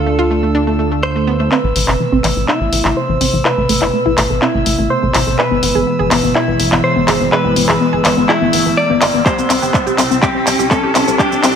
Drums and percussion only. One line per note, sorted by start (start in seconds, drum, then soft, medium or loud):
0.07 shaker soft
0.19 shaker soft
0.31 shaker medium
0.43 shaker soft
0.55 shaker soft
0.68 shaker soft
0.79 shaker medium
0.92 shaker soft
1.16 shaker soft
1.28 shaker medium
1.40 shaker soft
1.52 clap soft
1.76 open hi-hat medium
1.88 clap soft
2.24 clap soft
2.24 open hi-hat loud
2.48 clap soft
2.73 open hi-hat medium
2.85 clap soft
3.21 open hi-hat loud
3.45 clap medium
3.69 open hi-hat loud
3.82 clap soft
4.18 clap medium
4.18 open hi-hat loud
4.42 clap medium
4.66 open hi-hat loud
5.14 clap medium
5.14 open hi-hat loud
5.39 clap medium
5.63 open hi-hat loud
6.11 clap medium
6.11 open hi-hat loud
6.35 clap medium
6.60 open hi-hat loud
6.72 clap medium
7.08 clap medium
7.08 open hi-hat loud
7.32 clap medium
7.56 open hi-hat loud
7.69 clap medium
8.05 clap medium
8.05 open hi-hat loud
8.29 clap medium
8.53 open hi-hat loud
9.02 clap medium
9.02 open hi-hat loud
9.26 kick loud
9.26 clap medium
9.26 shaker soft
9.39 shaker soft
9.50 clap medium
9.50 open hi-hat loud
9.50 shaker medium
9.63 shaker soft
9.74 kick loud
9.74 clap medium
9.74 shaker soft
9.87 shaker soft
9.98 clap medium
9.98 open hi-hat loud
9.98 shaker medium
10.11 shaker soft
10.23 kick loud
10.23 clap medium
10.23 shaker soft
10.47 clap medium
10.47 open hi-hat loud
10.47 shaker medium
10.60 shaker soft
10.71 kick loud
10.71 clap medium
10.71 shaker soft
10.95 clap medium
10.95 open hi-hat loud
10.95 shaker medium
11.08 shaker soft
11.19 kick loud
11.19 clap medium
11.19 shaker soft
11.32 shaker soft
11.43 clap medium
11.43 open hi-hat medium
11.43 shaker medium